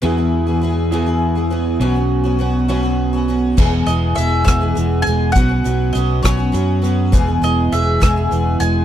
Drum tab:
CC |------|------|x-----|------|
HH |------|------|-xxxxx|xxxxxx|
SD |------|------|---r--|---r--|
BD |------|------|o--o--|o--o--|

CC |------|
HH |xxxxxx|
SD |---r--|
BD |o--o--|